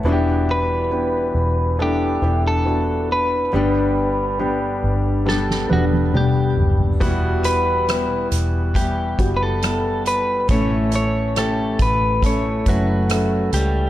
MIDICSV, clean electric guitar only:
0, 0, Header, 1, 2, 480
1, 0, Start_track
1, 0, Tempo, 869565
1, 28, Time_signature, 4, 2, 24, 8
1, 7671, End_track
2, 0, Start_track
2, 0, Title_t, "Clean electric guitar"
2, 0, Program_c, 0, 27
2, 282, Note_on_c, 0, 71, 85
2, 973, Note_off_c, 0, 71, 0
2, 1005, Note_on_c, 0, 67, 68
2, 1364, Note_off_c, 0, 67, 0
2, 1366, Note_on_c, 0, 69, 79
2, 1721, Note_off_c, 0, 69, 0
2, 1723, Note_on_c, 0, 71, 80
2, 2918, Note_on_c, 0, 69, 70
2, 2952, Note_off_c, 0, 71, 0
2, 3159, Note_off_c, 0, 69, 0
2, 3161, Note_on_c, 0, 66, 67
2, 3224, Note_off_c, 0, 66, 0
2, 3405, Note_on_c, 0, 67, 57
2, 3735, Note_off_c, 0, 67, 0
2, 4113, Note_on_c, 0, 71, 94
2, 4569, Note_off_c, 0, 71, 0
2, 4835, Note_on_c, 0, 67, 67
2, 5131, Note_off_c, 0, 67, 0
2, 5170, Note_on_c, 0, 71, 60
2, 5198, Note_off_c, 0, 71, 0
2, 5204, Note_on_c, 0, 69, 81
2, 5534, Note_off_c, 0, 69, 0
2, 5561, Note_on_c, 0, 71, 88
2, 5799, Note_off_c, 0, 71, 0
2, 5801, Note_on_c, 0, 73, 82
2, 6040, Note_off_c, 0, 73, 0
2, 6047, Note_on_c, 0, 73, 92
2, 6284, Note_on_c, 0, 69, 79
2, 6285, Note_off_c, 0, 73, 0
2, 6523, Note_off_c, 0, 69, 0
2, 6525, Note_on_c, 0, 71, 77
2, 6763, Note_off_c, 0, 71, 0
2, 6768, Note_on_c, 0, 73, 73
2, 7006, Note_on_c, 0, 66, 74
2, 7011, Note_on_c, 0, 54, 58
2, 7455, Note_off_c, 0, 66, 0
2, 7456, Note_off_c, 0, 73, 0
2, 7458, Note_off_c, 0, 54, 0
2, 7474, Note_on_c, 0, 67, 85
2, 7486, Note_on_c, 0, 55, 64
2, 7671, Note_off_c, 0, 55, 0
2, 7671, Note_off_c, 0, 67, 0
2, 7671, End_track
0, 0, End_of_file